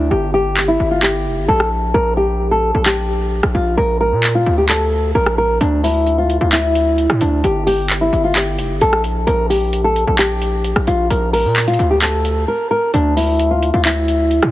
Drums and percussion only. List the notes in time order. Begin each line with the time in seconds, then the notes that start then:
0.57 clap
1.03 clap
1.60 cross-stick
2.86 clap
3.43 cross-stick
4.23 clap
4.69 clap
5.26 cross-stick
5.61 closed hi-hat
5.84 open hi-hat
6.07 closed hi-hat
6.30 closed hi-hat
6.52 clap, closed hi-hat
6.75 closed hi-hat
6.98 closed hi-hat
7.10 cross-stick
7.21 closed hi-hat
7.44 closed hi-hat
7.67 open hi-hat
7.90 clap, closed hi-hat
8.13 closed hi-hat
8.36 clap, closed hi-hat
8.59 closed hi-hat
8.81 closed hi-hat
8.93 cross-stick
9.04 closed hi-hat
9.27 closed hi-hat
9.50 open hi-hat
9.73 closed hi-hat
9.96 closed hi-hat
10.19 clap, closed hi-hat
10.42 closed hi-hat
10.64 closed hi-hat
10.76 cross-stick
10.87 closed hi-hat
11.11 closed hi-hat
11.34 open hi-hat
11.56 clap, closed hi-hat
11.62 closed hi-hat
11.68 closed hi-hat
11.73 closed hi-hat
11.79 closed hi-hat
12.02 clap, closed hi-hat
12.25 closed hi-hat
12.94 closed hi-hat
13.17 open hi-hat
13.39 closed hi-hat
13.63 closed hi-hat
13.85 clap, closed hi-hat
14.08 closed hi-hat
14.31 closed hi-hat
14.43 cross-stick